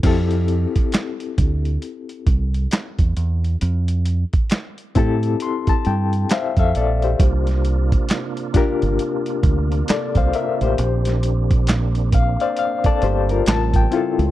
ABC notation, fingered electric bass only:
X:1
M:4/4
L:1/16
Q:"Swing 16ths" 1/4=67
K:F
V:1 name="Fingered electric bass" clef=bass
F,,3 z3 D,,2 z2 C,,2 z E,, E,,2 | F,,3 z3 A,,2 z2 G,,2 z F,, B,,,2 | C,,4 z3 G,,, z2 D,,2 z C,, z A,,, | B,,,6- B,,, z3 G,,,2 A,,,2 z ^C,, |]